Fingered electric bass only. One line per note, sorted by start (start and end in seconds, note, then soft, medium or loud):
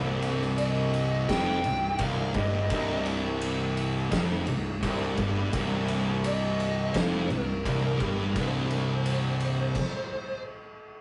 0.00 1.25 C1 loud
1.29 1.62 F1 medium
1.65 1.97 C1 medium
2.00 2.32 C1 medium
2.35 2.68 G1 medium
2.71 4.08 C1 loud
4.13 4.45 F1 medium
4.48 4.81 C1 medium
4.83 5.16 C1 medium
5.18 5.51 G1 medium
5.53 6.90 C1 loud
6.95 7.28 F1 loud
7.32 7.63 C1 medium
7.66 7.99 C1 medium
8.01 8.33 G1 medium
8.36 9.73 C1 loud